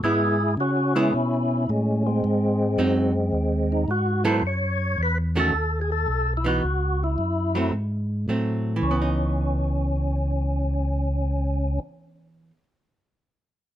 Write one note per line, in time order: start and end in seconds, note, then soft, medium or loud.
0.03 0.56 G#2 medium
0.03 0.36 G#3 medium
0.03 0.37 B3 medium
0.03 0.55 E4 medium
0.03 0.37 E4 medium
0.03 0.55 G#4 loud
0.57 1.11 C#3 medium
0.57 0.94 C#4 medium
0.57 0.97 F#4 medium
0.95 1.12 G#3 medium
0.95 1.12 B3 medium
0.95 1.65 C#4 medium
0.95 1.71 E4 loud
0.95 1.12 E4 medium
1.14 1.67 B2 medium
1.69 2.22 A2 medium
1.69 2.03 G#3 medium
1.69 2.07 C#4 medium
2.07 3.85 G#3 medium
2.07 3.85 C4 medium
2.24 2.77 G#2 medium
2.78 3.32 F#2 medium
2.78 3.11 F#3 medium
2.78 3.12 C4 medium
2.78 3.12 D#4 medium
3.32 3.86 D#2 medium
3.72 3.90 D#4 medium
3.88 4.41 G#2 loud
3.88 4.24 F#4 medium
4.25 4.41 F#3 medium
4.25 4.41 B3 medium
4.25 4.41 E4 medium
4.25 4.41 A4 medium
4.25 4.38 C5 medium
4.39 4.96 F#2 medium
4.39 4.44 C5 medium
4.47 5.02 C#5 medium
4.98 5.52 E2 medium
5.03 5.18 B4 loud
5.36 5.52 D#3 medium
5.36 5.52 A3 medium
5.36 5.52 C#4 medium
5.36 5.52 F#4 medium
5.40 5.80 A4 loud
5.53 6.07 D#2 medium
5.81 5.90 G#4 medium
5.92 6.34 A4 loud
6.08 6.62 B1 medium
6.37 6.46 E4 medium
6.44 6.61 E3 medium
6.44 6.62 B3 medium
6.44 6.62 D#4 medium
6.44 7.03 F#4 medium
6.64 7.17 C#2 medium
7.04 7.71 E4 medium
7.18 7.72 F#2 medium
7.55 7.72 F#3 medium
7.55 7.72 A3 medium
7.55 7.73 C4 medium
7.72 8.26 G#2 medium
8.28 8.82 A2 medium
8.28 8.76 F#3 soft
8.28 8.84 A3 soft
8.28 8.84 C4 medium
8.76 12.50 E3 medium
8.82 11.79 C#2 medium
8.82 11.80 C#4 medium
8.91 12.58 B3 medium
9.02 12.63 D#4 medium